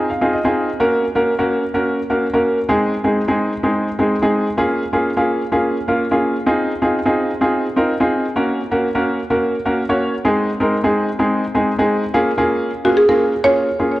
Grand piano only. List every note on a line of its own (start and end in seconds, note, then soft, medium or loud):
0.10 0.31 F5 medium
0.21 0.37 C4 medium
0.21 0.37 D#4 medium
0.21 0.37 F4 medium
0.21 0.37 G#4 medium
0.33 0.77 D#5 medium
0.44 0.69 C4 medium
0.44 0.69 D#4 medium
0.44 0.69 F4 medium
0.44 0.69 G#4 medium
0.80 1.04 A#3 medium
0.80 1.04 C#4 medium
0.80 1.04 F#4 medium
0.80 1.04 A#4 medium
1.15 1.31 A#3 medium
1.15 1.31 C#4 medium
1.15 1.32 F#4 medium
1.15 1.32 A#4 medium
1.39 1.63 A#3 medium
1.39 1.63 C#4 medium
1.39 1.63 F#4 medium
1.39 1.63 A#4 medium
1.74 1.98 A#3 medium
1.74 1.98 C#4 medium
1.74 1.99 F#4 medium
1.74 1.99 A#4 medium
2.10 2.26 A#3 medium
2.10 2.26 C#4 medium
2.10 2.26 F#4 medium
2.10 2.26 A#4 medium
2.33 2.58 A#3 medium
2.33 2.58 C#4 medium
2.33 2.58 F#4 medium
2.33 2.58 A#4 medium
2.69 2.93 G#3 medium
2.69 2.93 C4 medium
2.69 2.93 D#4 medium
2.69 2.93 G#4 medium
3.04 3.20 G#3 medium
3.04 3.20 C4 medium
3.04 3.20 D#4 medium
3.04 3.20 G#4 medium
3.28 3.52 G#3 medium
3.28 3.52 C4 medium
3.28 3.52 D#4 medium
3.28 3.52 G#4 medium
3.63 3.87 G#3 medium
3.63 3.88 C4 medium
3.63 3.88 D#4 medium
3.63 3.88 G#4 medium
3.99 4.15 G#3 medium
3.99 4.15 C4 medium
3.99 4.15 D#4 medium
3.99 4.15 G#4 medium
4.22 4.46 G#3 medium
4.22 4.47 C4 medium
4.22 4.47 D#4 medium
4.22 4.47 G#4 medium
4.57 4.82 A#3 medium
4.57 4.82 C#4 medium
4.57 4.82 F4 medium
4.57 4.82 G#4 medium
4.93 5.09 A#3 medium
4.93 5.09 C#4 medium
4.93 5.09 F4 medium
4.93 5.09 G#4 medium
5.17 5.41 A#3 medium
5.17 5.41 C#4 medium
5.17 5.41 F4 medium
5.17 5.41 G#4 medium
5.52 5.76 A#3 medium
5.52 5.76 C#4 medium
5.52 5.76 F4 medium
5.52 5.77 G#4 medium
5.88 6.04 A#3 medium
5.88 6.04 C#4 medium
5.88 6.04 F4 medium
5.88 6.04 A#4 medium
6.11 6.35 A#3 medium
6.11 6.35 C#4 medium
6.11 6.36 F4 medium
6.11 6.36 G#4 medium
6.46 6.71 C4 medium
6.46 6.71 D#4 medium
6.46 6.71 F4 medium
6.46 6.71 G#4 medium
6.82 6.98 C4 medium
6.82 6.98 D#4 medium
6.82 6.98 F4 medium
6.82 6.98 G#4 medium
7.06 7.30 C4 medium
7.06 7.30 D#4 medium
7.06 7.30 F4 medium
7.06 7.30 G#4 medium
7.41 7.65 C4 medium
7.41 7.65 D#4 medium
7.41 7.65 F4 medium
7.41 7.66 G#4 medium
7.76 7.93 C4 medium
7.76 7.93 D#4 medium
7.76 7.93 F4 medium
7.76 7.93 A#4 medium
8.00 8.24 C4 medium
8.00 8.25 D#4 medium
8.00 8.25 F4 medium
8.00 8.25 G#4 medium
8.36 8.60 A#3 medium
8.36 8.60 C#4 medium
8.36 8.60 F#4 medium
8.36 8.60 A#4 medium
8.71 8.87 A#3 medium
8.71 8.87 C#4 medium
8.71 8.87 F#4 medium
8.71 8.88 A#4 medium
8.95 9.19 A#3 medium
8.95 9.19 C#4 medium
8.95 9.19 F#4 medium
8.95 9.19 A#4 medium
9.30 9.54 A#3 medium
9.30 9.54 C#4 medium
9.30 9.54 F#4 medium
9.30 9.55 A#4 medium
9.65 9.82 A#3 medium
9.65 9.82 C#4 medium
9.65 9.82 F#4 medium
9.65 9.82 A#4 medium
9.89 10.13 A#3 medium
9.89 10.13 C#4 medium
9.89 10.13 F#4 medium
9.89 10.14 C#5 medium
10.25 10.49 G#3 medium
10.25 10.49 C4 medium
10.25 10.49 D#4 medium
10.25 10.49 G#4 loud
10.60 10.76 G#3 medium
10.60 10.76 C4 medium
10.60 10.76 D#4 medium
10.60 10.77 A#4 medium
10.84 11.08 G#3 medium
10.84 11.08 C4 medium
10.84 11.08 D#4 medium
10.84 11.08 G#4 medium
11.19 11.43 G#3 medium
11.19 11.43 C4 medium
11.19 11.44 D#4 medium
11.19 11.44 G#4 medium
11.55 11.71 G#3 medium
11.55 11.71 C4 medium
11.55 11.71 D#4 medium
11.55 11.71 G#4 medium
11.78 12.03 G#3 medium
11.78 12.03 C4 medium
11.78 12.03 D#4 medium
11.78 12.03 G#4 medium
12.14 12.30 A#3 medium
12.14 12.30 C#4 medium
12.14 12.30 F4 medium
12.14 12.30 G#4 loud
12.38 12.70 A#3 medium
12.38 12.70 C#4 medium
12.38 12.70 F4 medium
12.38 12.70 G#4 medium
12.85 13.01 A#3 medium
12.85 13.01 C#4 medium
12.85 13.01 F4 medium
12.85 13.01 G#4 medium
13.08 13.32 A#3 medium
13.08 13.33 C#4 medium
13.08 13.33 F4 medium
13.08 13.33 G#4 medium
13.44 13.68 A#3 medium
13.44 13.68 C#4 medium
13.44 13.68 F4 medium
13.44 13.68 G#4 medium
13.79 13.95 A#3 medium
13.79 13.95 C#4 medium
13.79 13.95 F4 medium
13.79 13.96 G#4 medium